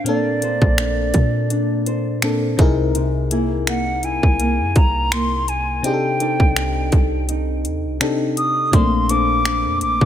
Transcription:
0.00 0.41 D4 medium
0.00 0.42 A4 soft
0.00 0.43 C5 medium
0.04 2.18 A#2 medium
0.04 2.18 A#3 medium
0.04 2.98 A#3 medium
0.04 2.19 C4 medium
0.04 2.20 D4 medium
0.04 2.19 D5 medium
0.04 closed hi-hat medium
0.09 2.20 A4 medium
0.42 0.77 D4 medium
0.42 1.13 A4 medium
0.42 1.86 C5 medium
0.42 closed hi-hat medium
0.62 1.12 A#1 loud
0.62 kick medium
0.78 1.49 D4 medium
0.78 finger snap loud
0.78 closed hi-hat medium
1.14 2.55 A#2 loud
1.14 2.67 A4 medium
1.14 kick medium
1.14 closed hi-hat medium
1.50 2.22 D4 medium
1.50 closed hi-hat medium
1.86 3.34 C5 medium
1.86 closed hi-hat medium
2.22 2.59 A#2 medium
2.22 2.59 A#3 medium
2.22 2.57 C4 medium
2.22 2.67 D4 medium
2.22 2.59 D4 soft
2.22 2.60 A4 medium
2.22 finger snap loud
2.22 closed hi-hat medium
2.57 4.19 C2 loud
2.57 5.43 C3 medium
2.57 2.94 C3 medium
2.57 5.44 C4 medium
2.57 5.44 D#4 medium
2.57 5.44 E4 medium
2.57 5.45 G#4 medium
2.57 kick loud
2.57 closed hi-hat medium
2.62 5.45 A#4 medium
2.95 5.84 C3 medium
2.95 closed hi-hat medium
3.31 3.66 A#3 medium
3.31 4.02 E4 medium
3.31 4.75 G#4 medium
3.31 closed hi-hat medium
3.67 4.38 A#3 medium
3.67 4.06 F#5 medium
3.67 finger snap loud
3.67 closed hi-hat medium
4.03 5.92 E4 medium
4.03 4.78 G#5 medium
4.03 closed hi-hat medium
4.23 4.61 C2 loud
4.23 kick medium
4.39 5.11 A#3 medium
4.39 closed hi-hat medium
4.59 4.75 F#2 loud
4.76 5.80 C2 loud
4.76 5.92 G#4 medium
4.76 5.14 A#5 medium
4.76 kick medium
4.76 closed hi-hat medium
5.12 5.84 A#3 medium
5.12 5.50 C6 loud
5.12 finger snap loud
5.12 closed hi-hat medium
5.48 5.86 G#5 medium
5.48 closed hi-hat medium
5.82 7.96 C3 medium
5.82 7.97 C4 medium
5.82 8.73 C4 medium
5.82 7.97 D4 medium
5.82 7.97 D#4 medium
5.82 7.98 G4 medium
5.82 6.93 G5 medium
5.82 closed hi-hat medium
5.87 5.93 G#4 medium
5.93 8.01 A4 medium
6.20 6.55 D#4 medium
6.20 6.92 A4 medium
6.20 8.04 D5 medium
6.20 closed hi-hat medium
6.40 6.91 C2 loud
6.40 kick medium
6.56 7.28 D#4 medium
6.56 finger snap loud
6.56 closed hi-hat medium
6.92 7.67 C2 medium
6.92 9.10 A4 medium
6.92 kick medium
6.92 closed hi-hat medium
7.29 8.00 D#4 medium
7.29 closed hi-hat medium
7.65 7.86 D#2 medium
7.65 closed hi-hat medium
7.85 8.00 C2 medium
8.00 8.73 C3 medium
8.00 8.72 C4 soft
8.00 8.73 D4 medium
8.00 8.81 D#4 medium
8.00 8.74 D#4 soft
8.00 8.74 G4 soft
8.00 8.74 A4 medium
8.00 finger snap loud
8.00 closed hi-hat medium
8.37 8.75 D#6 loud
8.37 closed hi-hat medium
8.71 9.67 A#1 loud
8.71 10.05 A#2 medium
8.71 10.05 A#3 medium
8.71 10.05 C4 medium
8.71 10.05 D4 medium
8.71 9.12 C6 loud
8.71 kick loud
8.71 closed hi-hat medium
8.76 10.05 A3 medium
9.09 9.44 D4 medium
9.09 9.82 A4 medium
9.09 10.05 C5 medium
9.09 9.82 D6 loud
9.09 closed hi-hat medium
9.45 10.05 D4 medium
9.45 finger snap loud
9.45 closed hi-hat medium
9.65 9.83 F2 loud
9.81 10.00 A#1 medium
9.81 10.05 D6 loud
9.81 closed hi-hat medium
10.01 10.05 A#1 loud
10.01 kick medium

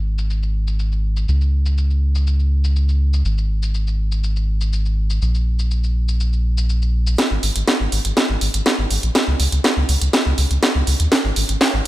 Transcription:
0.00 1.26 G#1 medium
0.18 shaker medium
0.30 shaker medium
0.43 shaker soft
0.67 shaker medium
0.79 shaker medium
0.92 shaker soft
1.17 shaker medium
1.28 3.23 C#2 medium
1.28 shaker medium
1.41 shaker soft
1.66 shaker medium
1.78 shaker medium
1.91 shaker soft
2.15 shaker medium
2.27 shaker medium
2.40 shaker soft
2.64 shaker medium
2.76 shaker medium
2.89 shaker soft
3.13 shaker medium
3.25 5.19 G#1 medium
3.25 shaker medium
3.38 shaker soft
3.63 shaker medium
3.74 shaker medium
3.87 shaker soft
4.12 shaker medium
4.24 shaker medium
4.36 shaker soft
4.61 shaker medium
4.73 shaker medium
4.85 shaker soft
5.10 shaker medium
5.22 7.16 A#1 medium
5.22 shaker medium
5.35 shaker soft
5.59 shaker medium
5.71 shaker medium
5.84 shaker soft
6.08 shaker medium
6.20 shaker medium
6.33 shaker soft
6.58 shaker medium
6.70 shaker medium
6.82 shaker soft
7.07 shaker medium
7.18 snare soft
7.18 closed hi-hat medium
7.31 7.38 G#1 medium
7.43 7.51 G#1 loud
7.43 open hi-hat loud
7.56 7.63 G#1 medium
7.56 closed hi-hat medium
7.68 snare soft
7.68 closed hi-hat soft
7.80 7.88 G#1 medium
7.92 8.00 G#1 loud
7.92 open hi-hat medium
8.05 8.12 G#1 medium
8.05 closed hi-hat medium
8.17 snare soft
8.17 closed hi-hat medium
8.29 8.37 G#1 medium
8.41 8.49 G#1 loud
8.41 open hi-hat loud
8.54 8.61 G#1 medium
8.54 closed hi-hat medium
8.66 snare medium
8.66 closed hi-hat medium
8.79 8.86 G#1 medium
8.90 8.98 G#1 medium
8.90 open hi-hat medium
9.03 9.11 A#1 medium
9.03 closed hi-hat medium
9.15 snare medium
9.15 closed hi-hat medium
9.28 9.35 C#2 medium
9.40 9.47 C#2 medium
9.40 open hi-hat loud
9.52 9.60 C#2 medium
9.52 closed hi-hat medium
9.64 snare medium
9.64 closed hi-hat soft
9.77 9.84 C#2 medium
9.89 9.97 C#2 loud
9.89 open hi-hat medium
10.01 10.09 C#2 medium
10.01 closed hi-hat medium
10.13 snare medium
10.13 closed hi-hat medium
10.26 10.33 C#2 medium
10.38 10.46 C#2 loud
10.38 open hi-hat loud
10.51 10.58 C#2 medium
10.51 closed hi-hat medium
10.63 snare medium
10.63 closed hi-hat medium
10.75 10.83 C#2 medium
10.87 10.95 C#2 medium
10.87 open hi-hat medium
11.00 11.07 D#2 medium
11.00 closed hi-hat medium
11.12 snare medium
11.12 closed hi-hat soft
11.24 11.32 G#1 medium
11.36 11.44 G#1 loud
11.36 open hi-hat loud
11.49 11.56 G#1 medium
11.49 closed hi-hat medium
11.61 snare medium
11.61 closed hi-hat soft
11.74 11.81 G#1 medium

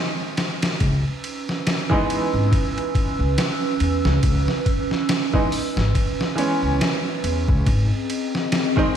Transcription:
0.00 0.78 D#3 medium
0.00 0.78 G#3 medium
0.00 0.79 C4 medium
0.00 0.79 D#4 loud
0.37 snare loud
0.37 ride medium
0.62 snare loud
0.62 ride medium
0.80 1.03 C#2 loud
0.80 7.63 C#4 medium
0.80 7.63 B4 medium
0.80 7.63 E6 medium
0.80 kick loud
0.80 ride medium
1.24 ride medium
1.49 snare soft
1.67 snare loud
1.67 ride medium
1.90 5.27 E3 medium
1.90 5.28 G#3 medium
1.90 5.29 B3 medium
1.90 5.29 D#4 loud
1.90 kick medium
2.10 ride medium
2.33 2.50 G#1 medium
2.52 kick loud
2.52 ride medium
2.78 ride soft
2.95 kick loud
2.95 ride medium
3.19 3.35 C#2 medium
3.38 snare loud
3.38 ride medium
3.80 4.03 E2 medium
3.80 ride medium
4.05 4.21 C#2 medium
4.05 snare medium
4.23 4.45 C#2 medium
4.23 kick loud
4.23 ride medium
4.48 snare soft
4.66 kick medium
4.66 ride medium
4.91 snare soft
5.09 snare loud
5.09 ride medium
5.33 5.50 E3 medium
5.33 5.50 G#3 medium
5.33 5.50 B3 medium
5.33 5.50 D#4 medium
5.33 kick loud
5.52 open hi-hat medium
5.77 5.93 G#1 medium
5.77 snare medium
5.95 kick loud
5.95 ride medium
6.21 snare medium
6.36 7.63 E3 medium
6.36 7.64 G#3 medium
6.36 7.64 B3 medium
6.36 7.65 C#4 loud
6.36 ride medium
6.63 6.79 C#2 medium
6.81 snare loud
6.81 ride medium
7.24 7.46 E2 medium
7.24 ride medium
7.48 7.64 C#2 medium
7.48 kick medium
7.65 7.89 G#1 medium
7.65 8.97 C4 medium
7.65 8.97 G#4 medium
7.65 8.97 D#5 medium
7.65 kick loud
7.65 ride medium
8.10 ride medium
8.35 snare soft
8.52 snare loud
8.52 ride medium
8.76 8.97 D#3 loud
8.76 8.97 G#3 medium
8.76 8.97 C4 medium
8.76 8.97 D#4 loud
8.76 kick medium

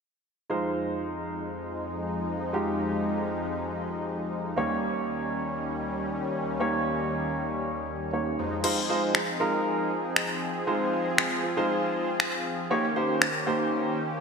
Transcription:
0.50 4.53 F2 medium
0.50 4.53 F3 medium
0.50 2.49 G#3 medium
0.50 4.53 G#3 medium
0.50 2.49 D#4 medium
0.50 4.53 D#4 medium
0.50 2.50 F4 medium
0.50 2.50 C5 medium
2.53 4.53 G#3 medium
2.53 4.53 D#4 medium
2.53 4.53 F4 medium
2.53 4.53 G4 medium
4.56 8.35 D#2 medium
4.56 8.35 D#3 medium
4.56 8.35 G3 medium
4.56 6.56 A#3 medium
4.56 8.35 C#4 medium
4.56 6.56 D#4 medium
4.56 6.56 G4 medium
4.56 6.57 C#5 medium
6.60 8.10 A#3 medium
6.60 8.10 D#4 medium
6.60 8.10 G4 medium
6.60 8.10 C#5 medium
8.13 8.38 A#3 medium
8.13 8.38 D#4 soft
8.13 8.39 G4 soft
8.13 8.39 C#5 medium
8.38 8.64 F2 medium
8.38 8.63 F3 medium
8.38 8.63 G#3 medium
8.38 8.63 D#4 medium
8.63 12.67 F3 medium
8.63 8.77 G#3 medium
8.63 12.67 C4 medium
8.63 8.77 D#4 medium
8.63 10.65 D#4 medium
8.63 8.77 F4 medium
8.63 12.67 G#4 medium
8.63 8.77 C5 medium
8.63 crash medium
8.89 9.14 G#3 medium
8.89 9.14 D#4 medium
8.89 9.14 F4 medium
8.89 9.14 C5 medium
9.15 finger snap loud
9.40 9.89 G#3 medium
9.40 9.90 D#4 medium
9.40 9.90 F4 medium
9.40 9.90 A#4 medium
10.16 finger snap loud
10.67 11.05 G#3 medium
10.67 11.05 D#4 medium
10.67 11.05 F4 medium
10.67 12.69 F4 medium
10.67 11.05 C5 medium
11.18 finger snap loud
11.43 11.50 F4 soft
11.43 11.50 C5 medium
11.57 12.06 G#3 medium
11.57 12.06 D#4 medium
11.57 12.06 F4 medium
11.57 12.06 C5 medium
12.20 finger snap loud
12.70 14.20 D#3 medium
12.70 12.84 A#3 medium
12.70 14.20 A#3 medium
12.70 14.20 C#4 medium
12.70 12.84 D#4 medium
12.70 12.84 G4 medium
12.70 14.20 G4 medium
12.70 12.84 C#5 medium
12.96 13.21 A#3 medium
12.96 13.21 D#4 medium
12.96 13.21 G4 medium
12.96 13.21 C5 medium
13.22 finger snap loud
13.46 13.96 A#3 medium
13.46 13.96 D#4 medium
13.46 13.96 G4 medium
13.46 13.96 C5 medium

